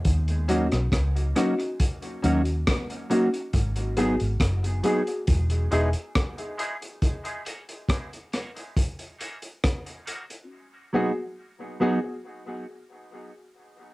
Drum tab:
HH |xxxxxxxxxxxxxxxx|xxxxxxxxxxxxxxxx|xxxxxxxxxxxxxxxx|----------------|
SD |---rr-r-----r---|----r-------r---|----r-r-----r---|----------------|
BD |o---o---o---o---|o---o---o---o---|o---o---o---o---|----------------|